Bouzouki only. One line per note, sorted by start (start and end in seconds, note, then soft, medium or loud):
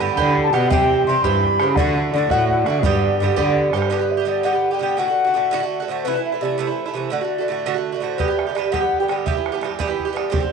0.00 0.16 A2 medium
0.00 0.17 D3 medium
0.00 0.17 B3 medium
0.00 0.16 G4 medium
0.17 0.54 A2 medium
0.17 0.54 D3 medium
0.17 0.53 B3 medium
0.17 0.52 G4 medium
0.53 0.71 D3 medium
0.53 0.71 B3 medium
0.53 0.70 G4 medium
0.70 1.06 G2 medium
0.70 1.07 E3 medium
0.70 1.07 C4 medium
0.70 1.08 G4 medium
1.07 1.24 G2 medium
1.07 1.24 E3 medium
1.07 1.24 C4 medium
1.07 1.23 G4 medium
1.24 1.61 G2 medium
1.24 1.61 E3 medium
1.24 1.60 C4 medium
1.24 1.59 G4 medium
1.60 1.78 E3 medium
1.60 1.78 C4 soft
1.60 1.77 G4 soft
1.77 2.12 A2 medium
1.77 2.15 D3 medium
1.77 2.14 A3 medium
1.77 2.15 F#4 medium
2.14 2.31 A2 medium
2.14 2.32 D3 medium
2.14 2.31 A3 medium
2.18 2.30 F#4 medium
2.31 2.68 A2 medium
2.31 2.69 D3 medium
2.31 2.67 A3 medium
2.31 2.65 F#4 medium
2.66 2.83 D3 medium
2.66 2.84 A3 soft
2.66 2.84 F#4 medium
2.83 3.19 G2 medium
2.83 3.21 D3 medium
2.83 3.21 B3 medium
2.83 3.21 G4 medium
3.20 3.37 G2 medium
3.20 3.37 D3 medium
3.20 3.36 B3 medium
3.20 3.35 G4 medium
3.36 3.74 G2 medium
3.36 3.77 D3 medium
3.36 3.73 B3 medium
3.36 3.72 G4 medium
3.73 3.89 D3 medium
3.73 3.90 B3 soft
3.73 3.91 G4 medium
3.90 4.00 G2 medium
3.90 4.00 D3 medium
3.90 4.00 B3 medium
3.90 3.98 G4 medium
3.99 4.19 D3 soft
3.99 4.18 B3 soft
3.99 4.16 G4 soft
4.17 4.25 D3 soft
4.17 4.26 B3 soft
4.17 4.27 G4 soft
4.25 4.42 G2 medium
4.25 4.43 D3 medium
4.25 4.44 B3 medium
4.25 4.45 G4 medium
4.43 4.53 G2 medium
4.43 4.54 D3 medium
4.43 4.53 B3 medium
4.43 4.51 G4 medium
4.53 4.73 D3 soft
4.53 4.72 B3 soft
4.53 4.70 G4 soft
4.71 4.79 D3 soft
4.71 4.81 B3 soft
4.71 4.80 G4 soft
4.79 4.97 G2 medium
4.79 4.97 D3 medium
4.79 4.98 B3 medium
4.79 4.99 G4 medium
4.97 5.07 A2 medium
4.97 5.07 D3 medium
4.97 5.08 A3 medium
4.97 5.07 F#4 medium
5.08 5.27 D3 soft
5.08 5.26 A3 soft
5.08 5.23 F#4 soft
5.25 5.34 D3 soft
5.25 5.35 A3 soft
5.25 5.34 F#4 medium
5.34 5.50 A2 medium
5.34 5.51 D3 medium
5.34 5.52 A3 medium
5.34 5.53 F#4 medium
5.51 5.61 A2 medium
5.51 5.62 D3 medium
5.51 5.62 A3 medium
5.51 5.59 F#4 loud
5.60 5.81 D3 soft
5.60 5.80 A3 medium
5.60 5.79 F#4 medium
5.80 5.88 D3 soft
5.80 5.89 A3 soft
5.80 5.88 F#4 medium
5.88 6.04 A2 soft
5.88 6.05 D3 medium
5.88 6.06 A3 medium
5.88 6.07 F#4 medium
6.05 6.14 C3 medium
6.05 6.15 E3 medium
6.05 6.16 A3 medium
6.05 6.14 E4 medium
6.15 6.34 E3 soft
6.15 6.33 A3 soft
6.15 6.31 E4 soft
6.32 6.41 E3 soft
6.32 6.42 A3 soft
6.32 6.41 E4 soft
6.41 6.57 C3 medium
6.41 6.57 E3 medium
6.41 6.58 A3 medium
6.41 6.59 E4 medium
6.58 6.68 C3 medium
6.58 6.68 E3 medium
6.58 6.68 A3 medium
6.58 6.66 E4 medium
6.67 6.88 E3 soft
6.67 6.87 A3 soft
6.67 6.84 E4 soft
6.86 6.94 E3 soft
6.86 6.95 A3 soft
6.86 6.95 E4 medium
6.94 7.10 C3 medium
6.94 7.11 E3 medium
6.94 7.11 A3 medium
6.94 7.13 E4 medium
7.10 7.21 A2 medium
7.10 7.21 D3 medium
7.10 7.22 A3 medium
7.10 7.20 F#4 medium
7.21 7.41 D3 soft
7.21 7.39 A3 soft
7.21 7.37 F#4 soft
7.38 7.48 D3 soft
7.38 7.49 A3 soft
7.38 7.48 F#4 soft
7.48 7.65 A2 medium
7.48 7.65 D3 medium
7.48 7.66 A3 medium
7.48 7.67 F#4 medium
7.66 7.75 A2 medium
7.66 7.75 D3 loud
7.66 7.75 A3 medium
7.66 7.73 F#4 medium
7.74 7.95 D3 soft
7.74 7.93 A3 soft
7.74 7.91 F#4 medium
7.92 8.01 D3 soft
7.92 8.01 A3 medium
7.92 8.01 F#4 soft
8.00 8.18 A2 medium
8.00 8.18 D3 medium
8.00 8.19 A3 medium
8.00 8.20 F#4 medium
8.18 8.28 G2 medium
8.18 8.28 D3 medium
8.18 8.29 B3 medium
8.18 8.27 G4 medium
8.28 8.48 D3 soft
8.28 8.47 B3 soft
8.28 8.45 G4 medium
8.47 8.55 D3 soft
8.47 8.56 B3 soft
8.47 8.55 G4 soft
8.55 8.71 G2 medium
8.55 8.71 D3 medium
8.55 8.72 B3 medium
8.55 8.73 G4 medium
8.72 8.82 G2 medium
8.72 8.82 D3 medium
8.72 8.81 B3 medium
8.72 8.79 G4 medium
8.80 9.00 B3 soft
8.80 8.99 G4 medium
8.84 9.01 D3 soft
9.00 9.08 D3 soft
9.00 9.10 B3 soft
9.00 9.09 G4 medium
9.08 9.25 G2 medium
9.08 9.26 D3 medium
9.08 9.26 B3 medium
9.08 9.26 G4 medium
9.26 9.35 G2 medium
9.26 9.36 E3 medium
9.26 9.35 B3 medium
9.26 9.33 G4 medium
9.35 9.54 E3 soft
9.35 9.53 B3 soft
9.35 9.51 G4 soft
9.52 9.62 E3 soft
9.52 9.62 B3 soft
9.52 9.61 G4 medium
9.61 9.78 G2 medium
9.61 9.79 E3 medium
9.61 9.79 B3 medium
9.61 9.80 G4 medium
9.79 9.89 G2 medium
9.79 9.89 E3 medium
9.79 9.88 B3 medium
9.79 9.86 G4 medium
9.87 10.07 E3 soft
9.87 10.06 B3 soft
9.87 10.04 G4 medium
10.05 10.13 E3 soft
10.05 10.14 B3 soft
10.05 10.15 G4 medium
10.13 10.30 G2 medium
10.13 10.31 E3 medium
10.13 10.31 B3 medium
10.13 10.31 G4 medium
10.30 10.41 A2 medium
10.30 10.41 D3 medium
10.30 10.41 C4 medium
10.30 10.39 G4 medium
10.40 10.52 D3 soft
10.40 10.52 C4 soft
10.40 10.52 G4 soft